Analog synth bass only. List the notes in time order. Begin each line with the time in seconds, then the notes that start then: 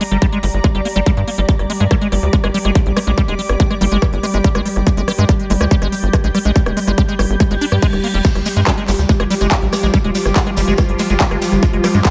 0.11 G1
0.43 G1
0.54 G1
0.75 G1
0.96 G1
1.17 G2
1.38 G1
1.59 G1
1.80 G2
2.12 G1
2.23 D2
2.44 G1
2.65 G1
2.86 A#1
3.07 A#1
3.28 F1
3.49 G1
3.81 G1
3.92 G1
4.13 G1
4.34 G1
4.55 G1
4.76 G1
4.97 G1
5.18 G2
5.50 G1
5.61 D2
5.82 G1
6.03 G1
6.24 A#1
6.45 A#1
6.66 F1
6.87 G1
7.19 G1
7.30 G1
7.51 G1
7.72 G2
7.93 F1
8.14 F1
8.35 G1
8.56 G2
8.88 G1
8.99 D2
9.20 G1
9.41 G1
9.62 A#1
9.83 A#1
10.04 F1
10.25 G1
10.57 G1
10.68 G1
10.89 G1
11.10 G1
11.31 G1
11.52 G1
11.73 G1
11.94 G2